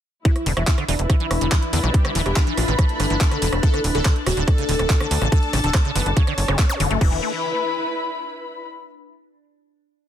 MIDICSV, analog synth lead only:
0, 0, Header, 1, 2, 480
1, 0, Start_track
1, 0, Tempo, 422535
1, 285, Time_signature, 4, 2, 24, 8
1, 11453, End_track
2, 0, Start_track
2, 0, Title_t, "Analog synth lead"
2, 0, Program_c, 0, 81
2, 285, Note_on_c, 0, 64, 108
2, 502, Note_off_c, 0, 64, 0
2, 645, Note_on_c, 0, 64, 98
2, 862, Note_off_c, 0, 64, 0
2, 1005, Note_on_c, 0, 62, 94
2, 1150, Note_off_c, 0, 62, 0
2, 1245, Note_on_c, 0, 64, 100
2, 2109, Note_off_c, 0, 64, 0
2, 2205, Note_on_c, 0, 67, 105
2, 2422, Note_off_c, 0, 67, 0
2, 2565, Note_on_c, 0, 67, 98
2, 2782, Note_off_c, 0, 67, 0
2, 2925, Note_on_c, 0, 65, 87
2, 3070, Note_off_c, 0, 65, 0
2, 3165, Note_on_c, 0, 69, 100
2, 4029, Note_off_c, 0, 69, 0
2, 4125, Note_on_c, 0, 69, 102
2, 4342, Note_off_c, 0, 69, 0
2, 4485, Note_on_c, 0, 69, 96
2, 4702, Note_off_c, 0, 69, 0
2, 4846, Note_on_c, 0, 66, 93
2, 4990, Note_off_c, 0, 66, 0
2, 5086, Note_on_c, 0, 69, 101
2, 5949, Note_off_c, 0, 69, 0
2, 6045, Note_on_c, 0, 69, 113
2, 6262, Note_off_c, 0, 69, 0
2, 6405, Note_on_c, 0, 69, 98
2, 6622, Note_off_c, 0, 69, 0
2, 6765, Note_on_c, 0, 71, 90
2, 6910, Note_off_c, 0, 71, 0
2, 7006, Note_on_c, 0, 73, 104
2, 7869, Note_off_c, 0, 73, 0
2, 7965, Note_on_c, 0, 71, 98
2, 8144, Note_off_c, 0, 71, 0
2, 11453, End_track
0, 0, End_of_file